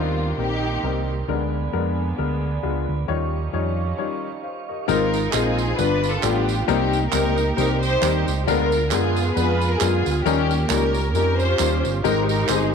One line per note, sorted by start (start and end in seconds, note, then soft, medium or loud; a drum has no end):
0.00 0.31 D#2 medium
0.00 0.15 C3 medium
0.00 1.26 C3 medium
0.00 1.26 D#3 medium
0.00 0.21 G3 medium
0.00 1.26 G3 medium
0.00 0.34 B3 medium
0.00 0.21 C4 medium
0.00 0.34 D4 medium
0.00 0.21 D#4 medium
0.00 0.33 F4 medium
0.00 0.21 A#4 medium
0.00 1.26 A#4 medium
0.00 1.27 A#4 medium
0.00 1.27 G5 medium
0.00 1.27 C6 medium
0.37 0.76 A#1 medium
0.37 0.66 G3 medium
0.37 1.24 A#3 medium
0.37 0.66 C4 medium
0.37 1.24 D#4 medium
0.37 0.66 D#4 medium
0.37 1.08 G4 loud
0.37 0.66 A#4 medium
0.83 1.21 C2 medium
0.83 1.11 G3 medium
0.83 1.11 C4 medium
0.83 1.11 D#4 medium
0.83 1.11 A#4 medium
1.28 1.67 D2 medium
1.28 3.07 D3 medium
1.28 1.95 D3 medium
1.28 3.07 G#3 medium
1.28 1.56 G#3 medium
1.28 3.07 A#3 medium
1.28 3.07 B3 medium
1.28 1.56 B3 medium
1.28 1.56 D4 medium
1.28 1.56 A#4 medium
1.28 3.07 D5 medium
1.28 3.07 G#5 medium
1.28 3.07 B5 medium
1.73 2.12 F2 medium
1.73 2.01 G#3 medium
1.73 2.01 B3 medium
1.73 2.01 D4 medium
1.73 2.01 A#4 medium
2.18 2.57 D2 medium
2.18 2.46 G#3 medium
2.18 2.46 B3 medium
2.18 2.46 D4 medium
2.18 2.46 A#4 medium
2.63 2.85 C#2 medium
2.63 2.91 G#3 medium
2.63 2.91 B3 medium
2.63 2.91 D4 medium
2.63 2.91 F4 medium
2.89 3.05 D2 medium
3.08 3.47 D#2 medium
3.08 3.75 D#3 medium
3.08 4.87 D#3 medium
3.08 4.87 F3 medium
3.08 3.36 G3 medium
3.08 4.87 G3 medium
3.08 4.87 C#4 medium
3.08 3.36 D#4 medium
3.08 3.36 F4 medium
3.08 4.87 G4 medium
3.08 3.36 C#5 loud
3.08 4.87 D#5 medium
3.08 4.87 F5 medium
3.08 4.87 C#6 medium
3.53 3.92 F2 medium
3.53 3.81 G3 medium
3.53 3.81 D#4 medium
3.53 3.81 F4 medium
3.53 3.81 C#5 medium
3.98 4.26 G3 medium
3.98 4.26 D#4 medium
3.98 4.26 F4 medium
3.98 4.26 C#5 medium
4.43 4.68 C5 soft
4.43 4.68 F5 medium
4.69 4.86 A#4 soft
4.69 5.11 D#5 medium
4.88 5.27 G#1 loud
4.88 5.55 G#2 medium
4.88 5.16 G#3 loud
4.88 5.16 C4 loud
4.88 5.16 D#4 loud
4.88 5.75 D#4 medium
4.88 5.16 F4 loud
4.88 5.33 F4 medium
4.88 5.16 A#4 loud
4.88 5.30 A#4 loud
4.88 tambourine medium
5.14 tambourine medium
5.33 5.72 A#1 medium
5.33 5.61 G#3 medium
5.33 5.61 C4 medium
5.33 5.75 C4 medium
5.33 5.61 D#4 medium
5.33 5.61 F4 medium
5.33 5.75 F4 medium
5.33 5.78 G#4 loud
5.33 5.61 A#4 medium
5.33 clap loud
5.33 tambourine loud
5.58 tambourine medium
5.77 6.16 G1 loud
5.77 6.44 G2 medium
5.77 6.06 G3 medium
5.77 6.06 B3 medium
5.77 6.06 D4 medium
5.77 6.23 D4 medium
5.77 6.06 F4 medium
5.77 6.64 F4 medium
5.77 6.13 B4 loud
5.77 6.06 B4 medium
5.77 tambourine medium
6.04 tambourine medium
6.12 6.23 A4 medium
6.23 6.61 A1 loud
6.23 6.51 G3 medium
6.23 6.51 B3 medium
6.23 6.65 B3 medium
6.23 6.51 D4 medium
6.23 6.65 D4 medium
6.23 6.51 F4 medium
6.23 6.65 G4 medium
6.23 6.51 A4 medium
6.23 clap loud
6.23 tambourine loud
6.49 tambourine medium
6.66 7.06 C2 loud
6.66 7.34 C3 medium
6.66 6.95 G3 loud
6.66 7.53 A#3 medium
6.66 6.95 A#3 loud
6.66 6.95 C4 loud
6.66 7.11 D#4 medium
6.66 6.95 D#4 loud
6.66 7.09 G4 loud
6.66 6.95 A#4 loud
6.66 tambourine medium
6.93 tambourine medium
7.11 7.51 C#2 medium
7.11 7.40 G3 medium
7.11 7.40 A#3 medium
7.11 7.40 C4 medium
7.11 7.56 D#4 medium
7.11 7.40 D#4 medium
7.11 7.57 G4 medium
7.11 7.53 A#4 loud
7.11 7.40 A#4 medium
7.11 clap loud
7.11 tambourine loud
7.38 tambourine medium
7.57 7.96 C2 loud
7.57 7.85 G3 medium
7.57 7.85 A#3 medium
7.57 7.85 C4 medium
7.57 7.85 D#4 medium
7.57 7.81 D#4 medium
7.57 7.81 G4 medium
7.57 7.80 A#4 loud
7.57 7.85 C5 medium
7.57 tambourine medium
7.82 8.43 D#4 medium
7.82 8.43 G4 medium
7.82 8.24 C5 loud
7.82 tambourine medium
8.02 8.23 D#2 loud
8.02 8.29 G3 medium
8.02 8.29 A#3 medium
8.02 8.29 C4 medium
8.02 8.30 D#4 medium
8.02 8.29 A#4 medium
8.02 clap loud
8.02 tambourine loud
8.27 8.44 C#2 medium
8.27 tambourine medium
8.46 8.92 D2 medium
8.46 9.13 D3 medium
8.46 8.75 G#3 loud
8.46 8.75 B3 loud
8.46 8.75 D4 loud
8.46 8.91 F4 medium
8.46 8.75 F4 loud
8.46 8.88 A#4 loud
8.46 8.75 A#4 loud
8.46 tambourine medium
8.72 tambourine medium
8.91 9.30 F#2 medium
8.91 9.19 G#3 medium
8.91 9.19 B3 medium
8.91 9.77 B3 medium
8.91 9.19 D4 medium
8.91 9.19 F4 medium
8.91 9.36 F4 medium
8.91 9.36 G#4 loud
8.91 9.19 A#4 loud
8.91 clap loud
8.91 tambourine loud
9.16 tambourine medium
9.35 9.74 F2 loud
9.35 9.64 G#3 medium
9.35 9.64 B3 medium
9.35 9.64 D4 medium
9.35 9.64 F4 medium
9.35 9.81 F4 medium
9.35 9.78 G#4 medium
9.35 9.71 B4 loud
9.35 9.64 B4 medium
9.35 tambourine medium
9.61 tambourine medium
9.70 9.80 A#4 loud
9.80 10.02 F#2 loud
9.80 10.08 G#3 medium
9.80 10.09 B3 medium
9.80 10.23 B3 medium
9.80 10.09 D4 medium
9.80 10.09 F4 medium
9.80 10.23 F4 medium
9.80 10.25 G#4 loud
9.80 10.09 A#4 medium
9.80 clap loud
9.80 tambourine loud
10.06 10.23 D2 medium
10.06 tambourine medium
10.24 10.64 D#2 loud
10.24 10.92 D#3 medium
10.24 10.53 G3 loud
10.24 11.11 A#3 medium
10.24 10.53 C#4 loud
10.24 10.69 C#4 medium
10.24 10.53 D#4 loud
10.24 10.53 F4 loud
10.24 10.67 G4 loud
10.24 10.53 A#4 loud
10.24 tambourine medium
10.51 tambourine medium
10.69 11.14 C#2 loud
10.69 10.98 G3 medium
10.69 10.98 C#4 medium
10.69 11.14 C#4 medium
10.69 10.98 D#4 medium
10.69 10.98 F4 medium
10.69 11.14 G4 medium
10.69 11.13 A#4 loud
10.69 10.98 A#4 medium
10.69 clap loud
10.69 tambourine loud
10.94 tambourine medium
11.14 11.53 F2 loud
11.14 11.43 G3 medium
11.14 11.43 C#4 medium
11.14 12.01 C#4 medium
11.14 11.43 D#4 medium
11.14 11.43 F4 medium
11.14 11.39 G4 medium
11.14 11.38 A#4 loud
11.14 11.43 A#4 medium
11.14 tambourine medium
11.39 12.00 F4 medium
11.39 12.01 G4 medium
11.39 11.84 C5 loud
11.39 tambourine medium
11.59 11.81 D#2 loud
11.59 11.87 G3 medium
11.59 11.87 C#4 medium
11.59 11.87 D#4 medium
11.59 11.87 F4 medium
11.59 11.87 A#4 medium
11.59 clap loud
11.59 tambourine loud
11.85 12.02 G1 medium
11.85 tambourine medium
12.04 12.43 G#1 loud
12.04 12.71 G#2 medium
12.04 12.32 G#3 loud
12.04 12.32 C4 medium
12.04 12.32 D#4 loud
12.04 12.75 D#4 medium
12.04 12.32 G4 loud
12.04 12.75 G4 medium
12.04 12.75 A#4 medium
12.04 12.28 A#4 loud
12.04 12.32 A#4 loud
12.04 12.75 D#5 medium
12.04 12.75 G5 medium
12.04 12.75 C6 medium
12.04 tambourine medium
12.29 12.47 A#4 loud
12.29 tambourine medium
12.49 12.75 G1 medium
12.49 12.75 G#3 medium
12.49 12.75 C4 medium
12.49 12.75 D#4 medium
12.49 12.75 G4 medium
12.49 12.75 G#4 medium
12.49 12.75 C5 medium
12.49 clap loud
12.49 tambourine loud